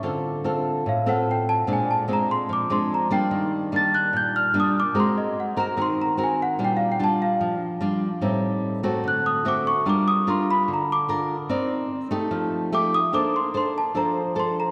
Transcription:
<<
  \new Staff \with { instrumentName = "Celesta" } { \time 4/4 \key bes \major \tempo 4 = 147 r2 f''8 ges''8 g''8 a''8 | aes''8 a''8 bes''8 c'''8 d'''8 c'''8 bes''8 g''8~ | g''8 r8 a'''8 ges'''8 g'''8 f'''8 ees'''8 d'''8 | c'''8 ees''8 ges''8 bes''8 c'''8 bes''8 aes''8 ges''8 |
\tuplet 3/2 { g''8 f''8 g''8 } a''8 f''4. r4 | r2 fis'''8 ees'''8 d'''8 des'''8 | d'''8 ees'''8 c'''8 ces'''8 bes''8 d'''8 r4 | r2. d'''8 ees'''8 |
d'''8 c'''8 c'''8 a''8 bes''4 c'''8 bes''8 | }
  \new Staff \with { instrumentName = "Nylon-string guitar" } { \time 4/4 \key bes \major << { <c' f' a'>4 <c' f' a'>4 r8 <c' f' a'>4. | <aes c' d'>4 <aes c' d'>4. <aes c' d'>4 <g bes d'>8~ | <g bes d'>4 <g bes d'>2 <g bes d'>8 r8 | <c' ges' bes'>4 r8 <c' ges' bes'>8 <c' ges' bes'>4 <c' ges' bes'>4 |
<g d' f'>4 <g d' f'>4. r8 <g d' f'>8 r8 | <g c' ees'>4. <a c' ges'>4. <a c' fis'>8 r8 | <d' f' bes'>4 <d' f' bes'>4. r8 <d' f' bes'>8 r8 | <ees' bes' d''>4 r8 <a ees' g'>4. <a ees' g'>8 r8 |
<d' a' c''>8 r8 <d' a' c''>8 r8 <d' a' c''>8 r8 <d' a' c''>8 r8 | } \\ { d2 a,2 | bes,2 f2 | ees2 bes,2 | aes2 ees2 |
bes,2 f2 | a,2 d2 | g2 d2 | c'2 f2 |
bes2 f2 | } >> }
>>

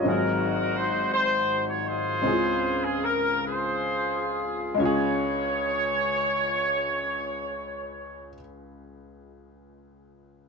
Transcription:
<<
  \new Staff \with { instrumentName = "Horn section" } { \time 6/8 \key des \major \tempo 4. = 42 << { bes'8. bes'16 c''8 c''8. des''16 c''8~ | c''8. aes'16 bes'8 c''4 r8 | des''2.~ | des''2. | } \\ { <ees' ges'>4. <ees' ges'>4 <f' aes'>8~ | <f' aes'>4 r8 <f' aes'>4. | r2. | r2. | } >> }
  \new Staff \with { instrumentName = "Upright piano" } { \time 6/8 \key des \major << { <f' des''>16 r2 r8. | r2. | r2. | r2. | } \\ { <aes,, aes, ges aes c' ees' aes'>2. | <des, des aes c' des' fes' f' aes'>2. | <des, aes des' f' aes'>2.~ | <des, aes des' f' aes'>2. | } >> }
>>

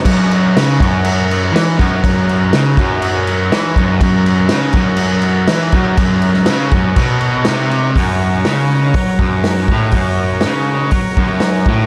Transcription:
<<
  \new Staff \with { instrumentName = "Transistor combo organ" } { \time 4/4 \key fis \major \tempo 4 = 121 <fis' ais' cis''>1~ | <fis' ais' cis''>1 | <fis' ais' cis''>1~ | <fis' ais' cis''>1 |
<fis' ais' cis''>1~ | <fis' ais' cis''>1 | }
  \new Staff \with { instrumentName = "Distorted electric guitar" } { \clef bass \time 4/4 \key fis \major fis,4 cis8 fis,4. e8 fis,8 | fis,4 cis8 fis,4. e8 fis,8 | fis,4 cis8 fis,4. e8 fis,8 | fis,4 cis8 fis,8 b,4 bis,4 |
fis,4 cis4 fis8 fis,4 a,8 | fis,4 cis4 fis8 fis,4 a,8 | }
  \new DrumStaff \with { instrumentName = "Drums" } \drummode { \time 4/4 <cymc bd>8 cymc8 <cymc sn>8 <cymc bd>8 cymc8 cymc8 <cymc sn>8 <cymc bd>8 | <cymc bd>8 cymc8 <cymc sn>8 <cymc bd>8 cymc8 cymc8 <cymc sn>8 <cymc bd>8 | <cymc bd>8 cymc8 <cymc sn>8 <cymc bd>8 cymc8 cymc8 <cymc sn>8 <cymc bd>8 | <cymc bd>8 cymc16 sn16 <cymc sn>8 <cymc bd>8 <cymc bd>8 cymc8 <cymc sn>8 cymc8 |
<hho bd>4 <hho sn>4 <hho bd>8 bd8 <hho sn>8 bd8 | <hho bd>4 <hho sn>4 <hho bd>8 bd8 <hho sn>8 bd8 | }
>>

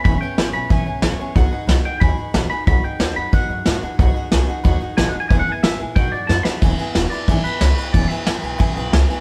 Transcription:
<<
  \new Staff \with { instrumentName = "Clean electric guitar" } { \time 4/4 \key e \major \tempo 4 = 182 b''8 g''4 b''8 gis''2~ | gis''4 r8 g''8 b''4. b''8 | b''8 g''4 b''8 fis''2~ | fis''4 r2 \tuplet 3/2 { gis''8 fis''8 gis''8 } |
\tuplet 3/2 { gis''8 fis''8 gis''8 } e''8 r8 g''8 d''8 a''8 b''8 | r4. d''4 b'4. | d''8 e''2. r8 | }
  \new Staff \with { instrumentName = "Upright piano" } { \time 4/4 \key e \major <b' e'' gis''>8 <b' e''>8 <b' e'' gis''>8 <b' e'' gis''>8 <b' e'' gis''>8 <b' e'' gis''>8 <b' gis''>8 <b' e'' gis''>8 | <b' dis'' fis''>8 <b' dis'' fis''>8 <b' dis'' fis''>8 <b' dis'' fis''>8 <b' dis'' gis''>8 <b' dis'' gis''>8 <b' dis'' fis''>8 <b' dis'' gis''>8 | <b' dis'' fis''>8 <b' dis'' fis''>8 fis''8 <b' dis'' fis''>8 <b' dis'' fis''>8 <b' dis''>8 <b' dis'' fis''>8 <b' dis'' fis''>8 | <b' dis'' fis''>8 <b' dis'' fis''>8 <b' dis'' gis''>8 <b' dis'' fis''>8 <b' dis'' fis''>8 <b' dis'' fis''>8 <b' dis'' fis''>8 <b' dis'' fis''>8 |
<b' e'' gis''>8 <b' e'' gis''>8 <b' gis''>8 <b' e'' gis''>8 <b' dis'' fis''>8 <b' dis'' fis''>8 <b' dis'' fis''>8 <b' dis'' fis''>8 | <b' e'' gis''>8 <b' e'' gis''>8 <b' e'' fis''>8 <b' e'' b''>8 <b' e'' gis''>8 gis''8 <b' e'' b''>8 <b' e'' b''>8 | <b' e'' gis''>8 <b' e'' gis''>8 <b' e'' gis''>8 <b' e'' gis''>8 <b' e'' gis''>8 <b' e'' gis''>8 <b' e'' gis''>8 <b' e'' gis''>8 | }
  \new Staff \with { instrumentName = "Steel-string acoustic guitar" } { \time 4/4 \key e \major <cis e b cis' gis' cis''>8 <b cis' gis' cis''>8 <b cis' gis' cis''>8 <b cis' gis' cis''>8 <cis e b cis' gis' cis''>8 <b cis' gis' cis''>8 <b cis' gis' cis''>8 <b cis' gis' cis''>8 | <b dis' fis' gis'>8 <dis' fis' gis'>8 <b dis' fis' gis'>8 <dis' fis' gis'>8 <b dis' fis' gis'>8 <dis' fis' gis'>8 <b dis' fis' gis'>8 <dis' fis' gis'>8 | <b dis' fis' gis'>8 <dis' fis' gis'>8 <b dis' fis' gis'>8 <dis' fis' gis'>8 <b dis' fis' gis'>8 <dis' fis' gis'>8 <b dis' fis' gis'>8 <dis' fis' gis'>8 | <b dis' fis' gis'>8 <dis' fis' gis'>8 <b dis' fis' gis'>8 <dis' fis' gis'>8 <b dis' fis' gis'>8 <dis' fis' gis'>8 <b dis' fis' gis'>8 <dis' fis' gis'>8 |
<cis e b e' gis' b'>8 <b e' gis' b'>8 <e' gis' b'>8 <b e' gis' b'>8 <b dis' fis' gis'>8 <dis' fis' gis'>8 <b dis' fis' gis'>8 <dis' fis' gis'>8 | <cis e b e' gis' b'>8 <b e' gis' b'>8 <b e' gis' b'>8 <b e' gis' b'>8 <cis e b e' gis' b'>8 <b e' gis' b'>8 <b e' gis' b'>8 <b e' gis' b'>8 | <cis e b e' gis' b'>8 <b e' gis' b'>8 <b e' gis' b'>8 <b e' gis' b'>8 <cis e b e' gis' b'>8 <b e' gis' b'>8 <b e' gis' b'>8 <b e' gis' b'>8 | }
  \new Staff \with { instrumentName = "Upright bass" } { \clef bass \time 4/4 \key e \major e,,8 r8 gis,,8 b,,8 b,,8 b,,8 a,,8 r8 | b,,8 r8 b,,8 r8 dis,8 r8 a,,8 r8 | b,,8 r8 dis,8 fis,8 fis,8 fis,8 a,8 r8 | b,,8 r8 b,,8 r8 dis,8 r8 a,,8 r8 |
e,,8 r8 gis,,8 ais,,8 b,,8 fis,8 fis,8 r8 | e,,8 r8 e,,8 r8 gis,,8 r8 cis,8 r8 | e,,8 r8 gis,,8 b,,8 b,,8 b,,8 cis,8 r8 | }
  \new DrumStaff \with { instrumentName = "Drums" } \drummode { \time 4/4 <hho bd>4 <hho sn>4 <hho bd>4 <hho sn>4 | <hho bd>4 <hho sn>4 <hho bd>4 <hho sn>4 | <hho bd>4 <hho sn>4 <hho bd>4 <hho sn>4 | <hho bd>4 <hho sn>4 <hho bd>4 <hho sn>4 |
<hho bd>4 <hho sn>4 <hho bd>4 sn8 sn8 | <bd cymr>8 cymr8 <cymr sn>8 cymr8 <bd cymr>8 cymr8 <cymr sn>8 cymr8 | <bd cymr>8 cymr8 <cymr sn>8 cymr8 <bd cymr>8 cymr8 <cymr sn>8 cymr8 | }
>>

